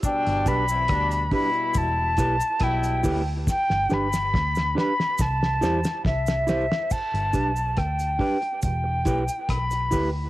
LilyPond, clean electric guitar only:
\new Staff \with { instrumentName = "Clean electric guitar" } { \time 4/4 \key g \major \tempo 4 = 70 r8 <d' g' b'>8 r8 <d' g' b'>8 r8 <e' g' b'>8 r8 <e' g' b'>8 | r8 <d' g' b'>8 r8 <d' g' b'>8 r8 <e' g' c''>8 r8 <e' g' c''>8 | r8 <d' g' b'>8 r8 <d' g' b'>8 r8 <e' g' b'>8 r8 <e' g' b'>8 | }